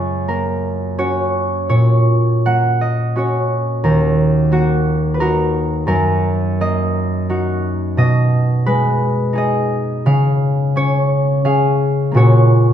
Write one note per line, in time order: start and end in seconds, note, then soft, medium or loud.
0.00 1.71 F#2 soft
0.00 0.97 C#4 soft
0.00 0.97 C#5 medium
0.28 2.45 A#3 soft
0.28 3.83 A#4 medium
0.98 3.15 C#4 soft
0.98 3.15 F#4 soft
0.98 1.68 C#5 medium
1.69 3.88 A#2 soft
1.69 3.15 C#5 medium
2.46 4.51 A#3 soft
2.46 6.36 F#5 medium
2.81 3.40 D#5 medium
3.16 3.88 C#4 soft
3.16 4.51 F#4 soft
3.16 3.87 C#5 medium
3.84 5.90 D#2 medium
3.84 5.19 A#4 medium
4.52 6.60 A#3 soft
4.52 5.20 F#4 medium
5.14 5.25 B4 medium
5.20 7.28 D#4 soft
5.20 7.29 F#4 medium
5.20 5.86 A#4 medium
5.87 8.01 F#2 medium
5.87 8.01 A#4 medium
6.61 8.01 A#3 medium
6.61 7.97 D#5 medium
7.29 9.33 D#4 soft
7.29 8.01 F#4 medium
7.97 10.07 B2 medium
7.97 9.34 D#5 medium
8.66 12.17 G#3 medium
8.66 10.08 B4 medium
9.33 10.08 D#4 soft
9.33 11.44 G#4 medium
9.38 10.08 D#5 medium
10.06 12.18 C#3 medium
10.06 11.44 F5 medium
10.76 11.44 C#4 medium
10.76 12.13 C#5 medium
11.45 12.13 C#4 soft
11.45 12.18 G#4 soft
11.45 12.17 F5 medium
12.12 12.73 A#2 medium
12.12 12.73 A#3 soft
12.12 12.73 C#4 soft
12.12 12.73 F#4 soft
12.17 12.73 C#5 medium